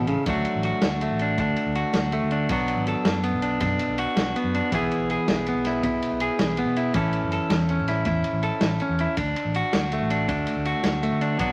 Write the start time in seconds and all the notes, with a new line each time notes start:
Already playing: C#4 E4 A4
0.00 A1
0.07 C#3, ride
0.26 D2 D3 F#3 A3 D4 F#4, kick, ride
0.45 ride
0.55 A1
0.63 F#4, ride
0.82 D2 F#3, snare, ride
1.01 A3, ride
1.10 A1
1.19 D4, ride
1.38 D2 D4, muted clean electric guitar stroke, kick, ride
1.56 ride
1.66 D2
1.75 F#4, ride
1.93 D2 F#3, snare, ride
2.12 A3, ride
2.23 D3
2.31 D4, ride
2.49 B1 B2 F#3 B3 D4 F#4, kick, ride
2.68 ride
2.77 G#1
2.87 A4, ride
3.05 F#2 F#3, snare, ride
3.23 B3, ride
3.32 B1
3.42 D4, ride
3.60 F#2 B2 D4, kick, ride
3.79 ride
3.88 B1
3.98 F#4, ride
4.16 B1 F#3, snare, ride
4.36 B3, ride
4.44 F#2
4.54 D4, ride
4.72 B1 B2 E3 B3 E4 G#4, kick, ride
4.91 ride
4.99 B1
5.10 G#4, ride
5.27 B1 E3, snare, ride
5.46 B3, ride
5.54 B1
5.65 E4, snare, ride
5.83 B1 B2 E4, kick, ride
6.02 ride
6.11 B1
6.20 G#4, ride
6.39 B1 E3, snare, ride
6.57 B3, ride
6.66 B2
6.76 E4, ride
6.94 A1 A2 E3 C#4 E4 A4, kick, ride
7.13 ride
7.22 F#1
7.32 A4, ride
7.50 E2 E3, snare, ride
7.69 C#4, ride
7.78 A1
7.88 E4, snare, ride
8.05 E2 A2 E4, kick, ride
8.24 ride
8.33 A1
8.43 A4, ride
8.61 A1 E3, snare, ride
8.80 C#4, ride
8.89 E2
8.99 E4, ride
9.17 D2 D3 D4, kick, ride
9.36 ride
9.45 A1
9.54 F#4, ride
9.73 D2 F#3, snare, ride
9.92 A3, ride
10.01 A1
10.10 D4, ride
10.28 D2 D3 D4, kick, ride
10.47 ride
10.56 D2
10.65 F#4, ride
10.84 D2 F#3, snare, ride
11.03 A3, ride
11.12 D3
11.21 D4, ride
11.38 B1 B2 F#3 B3 D4 F#4, kick, ride